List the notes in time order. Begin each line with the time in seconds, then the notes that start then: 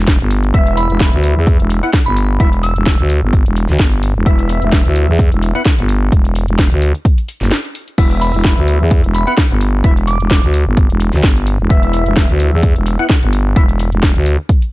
Already playing: E1
0.07 kick, snare, closed hi-hat
0.20 G1, closed hi-hat
0.31 open hi-hat
0.44 closed hi-hat
0.54 E1 B3 E4 E5, kick, closed hi-hat
0.67 closed hi-hat
0.77 B5, open hi-hat
0.90 E1, closed hi-hat
1.00 kick, snare, closed hi-hat
1.13 D2, closed hi-hat
1.24 open hi-hat
1.37 E2
1.47 kick, closed hi-hat
1.60 E1, closed hi-hat
1.70 open hi-hat
1.83 B3 E4 F#5, closed hi-hat
1.93 kick, snare, closed hi-hat
2.06 G1 B5, closed hi-hat
2.17 open hi-hat
2.40 E1 B3 E4 E5, kick, closed hi-hat
2.53 closed hi-hat
2.63 E6, open hi-hat
2.76 E1, closed hi-hat
2.86 kick, snare, closed hi-hat
2.99 D2, closed hi-hat
3.10 open hi-hat
3.23 G1
3.33 kick, closed hi-hat
3.46 E1, closed hi-hat
3.56 open hi-hat
3.69 D2, snare, closed hi-hat
3.79 G1, kick, snare, closed hi-hat
3.92 closed hi-hat
4.03 open hi-hat
4.16 E1
4.26 E1 B3 E4 E5, kick, closed hi-hat
4.39 closed hi-hat
4.49 open hi-hat
4.62 E1, closed hi-hat
4.72 kick, snare, closed hi-hat
4.85 D2, closed hi-hat
4.96 open hi-hat
5.09 E2
5.19 kick, closed hi-hat
5.32 E1, closed hi-hat
5.42 open hi-hat
5.55 B3 E4 F#5, closed hi-hat
5.65 kick, snare, closed hi-hat
5.78 G1, closed hi-hat
5.89 open hi-hat
6.12 E1, kick, closed hi-hat
6.25 closed hi-hat
6.35 open hi-hat
6.48 E1, closed hi-hat
6.59 kick, snare, closed hi-hat
6.71 D2, closed hi-hat
6.82 open hi-hat
6.95 closed hi-hat
7.05 kick, closed hi-hat
7.18 closed hi-hat
7.28 open hi-hat
7.41 F#1, snare, closed hi-hat
7.51 snare, closed hi-hat
7.64 closed hi-hat
7.75 open hi-hat
7.88 closed hi-hat
7.98 E1 B3 E4 E5, kick, closed hi-hat, crash
8.11 closed hi-hat
8.21 B5, open hi-hat
8.34 E1, closed hi-hat
8.44 kick, snare, closed hi-hat
8.57 D2, closed hi-hat
8.68 open hi-hat
8.81 E2
8.91 kick, closed hi-hat
9.04 E1, closed hi-hat
9.14 B5, open hi-hat
9.27 B3 E4 F#5 B5, closed hi-hat
9.37 kick, snare, closed hi-hat
9.50 G1, closed hi-hat
9.61 open hi-hat
9.84 E1 B3 E4 E5, kick, closed hi-hat
9.97 closed hi-hat
10.07 D6, open hi-hat
10.20 E1, closed hi-hat
10.31 kick, snare, closed hi-hat
10.43 D2, closed hi-hat
10.54 open hi-hat
10.67 G1
10.77 kick, closed hi-hat
10.90 E1, closed hi-hat
11.00 open hi-hat
11.13 D2, snare, closed hi-hat
11.23 G1, kick, snare, closed hi-hat
11.36 closed hi-hat
11.47 open hi-hat
11.60 E1
11.70 E1 B3 E4 E5, kick, closed hi-hat
11.83 closed hi-hat
11.93 open hi-hat
12.06 E1, closed hi-hat
12.16 kick, snare, closed hi-hat
12.29 D2, closed hi-hat
12.40 open hi-hat
12.53 E2
12.63 kick, closed hi-hat
12.76 E1, closed hi-hat
12.86 open hi-hat
12.99 B3 E4 F#5, closed hi-hat
13.09 kick, snare, closed hi-hat
13.22 G1, closed hi-hat
13.33 open hi-hat
13.56 E1 B3 E4 E5, kick, closed hi-hat
13.69 closed hi-hat
13.79 open hi-hat
13.92 E1, closed hi-hat
14.03 kick, snare, closed hi-hat
14.16 D2, closed hi-hat
14.26 open hi-hat
14.49 kick, closed hi-hat
14.62 closed hi-hat